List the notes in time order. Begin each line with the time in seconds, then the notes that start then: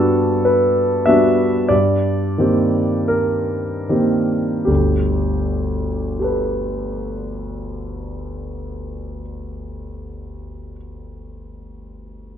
Already playing: G2 G3 B3 D4 F#4 A4
0.45 B4
1.06 G3 B3 D4 F#4 E5
1.69 G2 D5
2.38 D#3 A#3 C4 G4
3.08 A#4
3.89 D#3 A#3 C4 G4
4.65 G1 D2 G4
6.19 G4 A4
6.24 B4